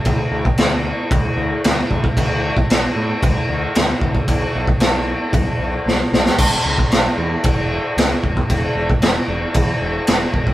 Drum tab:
CC |x---x---x---x---|x---x---x---x---|x---x---x-------|x---x---x---x---|
SD |----o-------o---|----o-------o---|----o-------o-oo|----o-------o---|
BD |o--o----o-----oo|o--o----o-----oo|o--o----o-------|o--o----o-----oo|

CC |x---x---x---x---|
SD |----o-------o---|
BD |o--o----o-----oo|